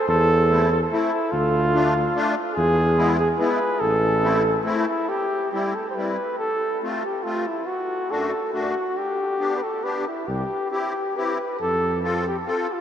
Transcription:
0.08 E2 A4
0.50 A3 C4 E4
0.72 A4
0.91 A3 C4 E4
1.32 D2 F4
1.74 A3 D4 F4
2.15 A3 D4 F4
2.54 E2 G#4
2.97 G#3 B3 E4
3.19 G#4
3.38 G#3 B3 E4 B4
3.80 A1 A4
4.22 A3 C4 E4
4.65 A3 C4 E4
4.87 E4
5.09 G4
5.52 G3 C4 E4 G4
5.75 A4
5.90 C5
5.95 G3 C4 E4 B4
6.38 A4
6.82 A3 C4 F4
7.04 G4
7.23 A3 C4 F4
7.47 E4
7.66 F#4
8.10 F#2 A3 D4 F#4 A4
8.52 F#2 A3 D4 F#4
8.97 G4
9.39 B3 D4 G4
9.57 B4
9.63 A4
9.83 B3 D4 G4 B4
10.08 E4
10.28 C2 G4
10.71 C4 E4 G4
11.16 C4 E4 G4 B4
11.60 F2 A4
12.04 C4 F4 A4
12.27 G4
12.46 C4 F4 A4
12.73 F4

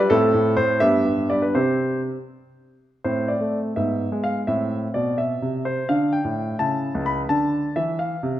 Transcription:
0.10 A2 C4 E4 A4
0.34 A2
0.57 A2 C5
0.80 G2 B3 G4 E5
1.05 G2
1.30 G2 D5
1.42 B4
1.55 C3 C4 G4 C5
3.04 A2 C4 C5
3.28 D5
3.41 A3
3.76 G#2 B3 E5
4.12 G#3
4.24 F5
4.47 A2 C4 E5
4.94 B2 D5
5.18 E5
5.42 C3
5.65 C5
5.89 D3 D4 F5
6.13 G5
6.25 A2
6.59 C#3 E4 A5
6.95 C#2
7.06 B5
7.29 D3 D4 A5
7.76 E3 E5
7.99 F5
8.23 C3

